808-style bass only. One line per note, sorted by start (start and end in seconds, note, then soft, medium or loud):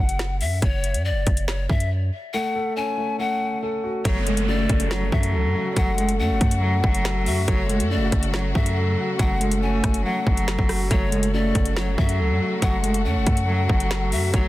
0.00 0.42 F#1 loud
0.41 0.61 F#2 loud
0.62 0.96 F#1 loud
0.94 1.12 F#2 medium
1.11 1.26 F#1 loud
1.27 1.68 F#1 loud
1.70 2.11 F#2 loud
4.05 4.67 F#1 loud
4.70 5.11 F#1 loud
5.12 5.35 F#2 loud
5.34 5.46 C#2 loud
5.44 5.55 F#2 loud
5.77 6.21 F#1 loud
6.19 6.32 F#2 loud
6.30 6.40 F#1 loud
6.41 6.82 F#2 loud
6.84 7.28 F#1 loud
7.27 7.47 F#2 loud
7.48 7.82 F#1 loud
7.80 7.98 F#2 loud
7.96 8.11 F#1 loud
8.12 8.53 F#1 loud
8.55 8.96 F#2 loud
9.19 9.81 F#1 loud
9.84 10.04 F#1 loud
10.27 10.57 F#1 loud
10.59 10.89 F#1 loud
10.91 11.53 F#1 loud
11.55 11.96 F#1 loud
11.98 12.21 F#2 loud
12.19 12.32 C#2 loud
12.30 12.40 F#2 loud
12.62 13.07 F#1 loud
13.05 13.17 F#2 loud
13.16 13.26 F#1 loud
13.27 13.68 F#2 loud
13.69 14.14 F#1 loud
14.12 14.33 F#2 loud
14.34 14.48 F#1 loud